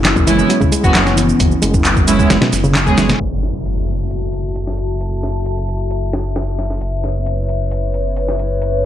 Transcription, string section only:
0.27 0.41 G#3 medium
0.27 0.41 B3 medium
0.27 0.41 C#4 medium
0.27 0.41 E4 loud
0.84 0.92 G#3 medium
0.84 0.92 B3 medium
0.84 0.92 C#4 medium
0.84 0.92 F#4 loud
2.07 2.21 G#3 medium
2.07 2.21 B3 medium
2.07 2.21 C#4 medium
2.07 2.21 E4 loud
2.87 2.95 G#3 medium
2.87 2.95 B3 medium
2.87 2.95 C#4 medium
2.87 2.95 G#4 medium

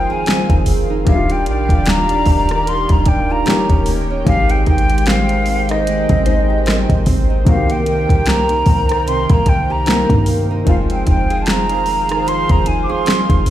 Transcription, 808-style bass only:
0.50 0.66 F1 loud
0.67 1.05 F1 loud
1.07 1.48 D#1 loud
1.47 1.69 A#1 loud
1.69 2.24 D#1 loud
2.26 2.87 D#1 loud
2.90 3.44 D#1 loud
3.70 4.24 D#1 loud
4.27 4.65 G#1 loud
4.67 6.06 G#1 loud
6.10 6.86 G#1 loud
6.90 7.06 G#1 loud
7.07 7.45 G#1 loud
7.47 8.07 C2 loud
8.09 8.64 C2 loud
8.66 9.27 C2 loud
9.30 10.07 C2 loud
10.10 10.64 G2 loud
10.67 11.05 F1 loud
11.07 12.46 F1 loud
12.50 12.88 F1 loud
13.30 13.46 F1 loud
13.46 13.50 F1 loud

